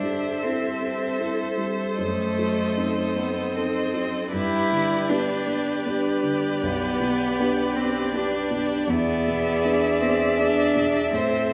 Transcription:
0.00 1.95 G2 soft
0.00 0.66 G3 soft
0.00 0.45 D4 medium
0.00 4.34 A4 soft
0.00 4.33 C5 soft
0.00 1.98 E5 soft
0.43 0.77 C4 soft
0.43 1.61 C4 soft
0.43 0.78 E4 soft
0.43 0.78 A4 soft
0.81 1.17 C4 soft
1.19 1.55 C4 soft
1.19 1.56 E4 soft
1.19 1.56 A4 soft
1.57 1.99 G3 soft
1.98 4.28 F#2 soft
1.98 3.18 A3 medium
1.98 4.29 D#5 soft
2.39 3.01 F#3 soft
2.77 3.13 C4 soft
2.77 3.13 D#4 soft
2.77 3.13 A4 soft
3.16 3.57 B3 medium
3.16 3.55 C4 soft
3.55 4.32 C4 medium
3.55 3.91 C4 soft
3.55 3.91 D#4 soft
3.55 3.91 A4 soft
3.94 4.33 F#3 soft
4.32 6.59 G2 soft
4.32 5.11 E4 medium
4.32 8.91 G4 soft
4.32 8.86 B4 soft
4.32 8.92 D5 soft
4.72 5.32 D3 soft
5.10 5.44 B3 soft
5.10 6.24 D4 medium
5.10 5.44 D4 soft
5.10 5.44 G4 soft
5.47 5.84 B3 soft
5.86 6.21 B3 soft
5.86 6.21 D4 soft
5.86 6.21 G4 soft
6.23 6.63 D3 soft
6.62 8.86 B1 medium
6.62 7.78 B3 medium
7.00 7.61 B2 soft
7.39 7.73 B3 soft
7.39 7.73 D4 soft
7.39 7.74 G4 soft
7.76 8.13 B3 soft
7.76 8.14 C4 medium
8.14 8.48 B3 soft
8.14 8.48 D4 soft
8.14 8.91 D4 medium
8.14 8.49 G4 soft
8.51 8.89 B2 soft
8.88 11.09 E2 medium
8.88 10.02 B3 medium
8.88 11.15 G#4 soft
8.88 11.16 D5 soft
8.88 11.53 E5 medium
9.28 9.88 B2 soft
9.64 9.98 B3 soft
9.64 9.99 D4 soft
9.64 9.99 G#4 soft
10.01 10.37 B3 soft
10.01 10.40 C4 medium
10.38 10.72 B3 soft
10.38 11.13 D4 medium
10.38 10.73 D4 soft
10.38 10.73 G#4 soft
10.75 11.14 B2 soft
11.13 11.53 A2 soft
11.13 11.53 C4 medium
11.13 11.53 A4 soft
11.13 11.53 C5 soft

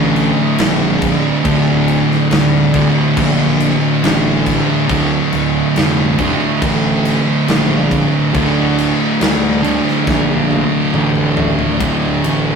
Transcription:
0.00 0.29 A1 loud
0.00 0.57 D2 medium
0.00 0.57 A2 medium
0.00 0.61 D3 medium
0.16 crash medium
0.57 1.16 A#1 medium
0.57 1.44 D2 medium
0.57 1.43 A2 medium
0.57 snare loud
0.57 crash medium
0.62 1.48 D3 medium
1.02 kick medium
1.02 crash medium
1.44 2.76 D2 medium
1.44 2.01 D2 loud
1.44 2.72 A2 medium
1.44 2.73 D3 medium
1.44 kick loud
1.44 crash medium
1.88 crash medium
2.12 snare soft
2.31 2.88 D2 medium
2.31 snare loud
2.31 crash medium
2.73 4.01 D2 medium
2.73 4.01 A2 medium
2.73 4.05 D3 medium
2.73 kick medium
2.73 crash medium
3.17 3.73 A#1 loud
3.17 kick loud
3.17 crash medium
3.60 crash medium
4.02 4.59 A1 medium
4.02 4.87 D2 medium
4.02 4.87 A2 medium
4.02 4.91 D3 medium
4.02 snare loud
4.02 crash medium
4.46 kick medium
4.46 crash medium
4.88 5.17 D1 medium
4.88 6.21 D2 medium
4.88 6.16 A2 medium
4.88 6.17 D3 loud
4.88 kick loud
4.88 crash medium
5.33 5.61 D1 medium
5.33 crash medium
5.76 6.32 F1 medium
5.76 snare loud
5.76 crash medium
6.18 7.47 D2 medium
6.18 7.46 A2 medium
6.18 7.50 D3 medium
6.18 kick medium
6.18 crash medium
6.62 7.18 A1 loud
6.62 kick loud
6.62 crash medium
7.05 crash medium
7.47 8.05 A#1 medium
7.47 8.33 D2 medium
7.47 8.32 A2 medium
7.47 8.37 D3 medium
7.47 snare loud
7.47 crash medium
7.91 kick medium
7.91 crash medium
8.34 9.61 D2 loud
8.34 8.91 D2 medium
8.34 9.62 A2 loud
8.34 9.62 D3 medium
8.34 kick loud
8.34 crash medium
8.78 crash medium
9.21 9.78 D2 medium
9.21 snare loud
9.21 crash medium
9.63 10.92 D2 medium
9.63 10.92 A2 medium
9.63 10.91 D3 medium
9.63 crash medium
9.88 snare soft
10.07 10.64 A#1 loud
10.07 kick loud
10.07 snare medium
10.51 high tom medium
10.93 11.51 A1 medium
10.93 11.78 D2 medium
10.93 11.79 A2 medium
10.93 11.80 D3 medium
10.93 mid tom medium
11.15 mid tom medium
11.37 floor tom loud
11.59 floor tom medium
11.79 12.18 D1 medium
11.79 12.55 D2 medium
11.79 12.55 A2 medium
11.79 12.55 D3 loud
11.79 kick loud
11.79 ride medium
12.24 12.55 A1 medium
12.24 ride medium

